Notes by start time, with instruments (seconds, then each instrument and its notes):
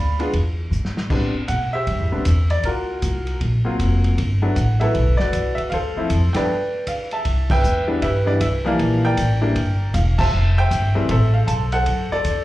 Already playing: upright bass D2, upright piano D5 F5 B5
0.19 upright piano G#3 B3 D4 F4, ride
0.33 upright bass E2, kick, ride
0.71 upright bass G#2, hi-hat pedal
0.85 snare
0.97 snare
1.10 upright bass A2, upright piano G3 B3 C4 D4, kick, crash
1.34 muted upright bass stroke
1.48 upright bass B2, upright piano F#5, kick, hi-hat pedal, ride
1.73 upright piano G4 C5 E5
1.87 upright bass G2, kick, ride
1.99 upright bass E2
2.12 upright bass C2, upright piano G3 B3 C4 D4
2.25 upright bass E2, kick, hi-hat pedal, ride
2.50 upright piano D5, ride
2.63 upright bass D2, upright piano F4 F#4 A#4, kick, ride
3.02 upright bass C2, kick, hi-hat pedal, ride
3.27 ride
3.41 upright bass A#1, kick, ride
3.65 upright piano F#3 A#3 C4 F4, muted upright bass stroke
3.79 upright bass F1, kick, hi-hat pedal, ride
4.04 ride
4.18 upright bass G1, kick, ride
4.42 upright piano F#3 A3 B3 D4
4.55 upright bass A1, upright piano F#5, kick, hi-hat pedal, ride
4.80 upright piano F#3 A3 B3 E4 A4 B4 E5, ride
4.95 upright bass B1, kick, ride
5.07 upright bass G1
5.17 upright bass F#1, upright piano F#4 B4 D5, snare
5.33 upright bass C2, kick, hi-hat pedal, ride
5.55 upright piano E5, muted upright bass stroke, ride
5.70 upright bass D2, upright piano A4 C5 F5, kick, ride
5.96 upright piano F3 A3 C4 E4, muted upright bass stroke
6.10 upright bass F2, kick, hi-hat pedal, ride
6.33 upright piano G2 F3 A3 B3 D4 B4 D5 G5, muted upright bass stroke, snare, ride
6.87 upright piano F5, kick, hi-hat pedal, ride
7.11 upright piano E5 A5, ride
7.25 upright bass C2, kick, ride
7.50 upright piano B4 E5 G5, kick, crash
7.64 upright bass E2, hi-hat pedal
7.88 upright piano E3 G3 B3 D4
8.02 upright bass G2, upright piano G4 B4 E5, kick, ride
8.26 upright piano E3 G3 B3 D4 D5
8.41 upright bass C2, upright piano E5, kick, hi-hat pedal, ride
8.65 upright piano E3 F3 G3 A#3 A#4 D5 F5
8.79 upright bass A#1, kick, ride
9.05 upright piano A#4 D5 G5
9.17 upright bass A1, kick, hi-hat pedal, ride
9.41 upright piano E3 G3 A#3 D4
9.56 upright bass G1, kick, ride
9.94 upright bass E1, upright piano F5, kick, hi-hat pedal, ride
10.18 upright piano C5 E5 A5, kick, crash
10.32 upright bass F1
10.58 upright piano C5 E5 G5
10.71 upright bass G1, kick, hi-hat pedal, ride
10.95 upright piano E3 G3 A3 C4, muted upright bass stroke
11.09 upright bass A1, upright piano A4 C5 E5, kick, ride
11.34 upright piano F5
11.47 upright bass B1, upright piano A5, kick, hi-hat pedal, ride
11.72 upright piano A4 C5 F#5, ride
11.86 upright bass F#2, kick, ride
12.11 upright piano A4 D5, muted upright bass stroke
12.24 upright bass E2, kick, hi-hat pedal, ride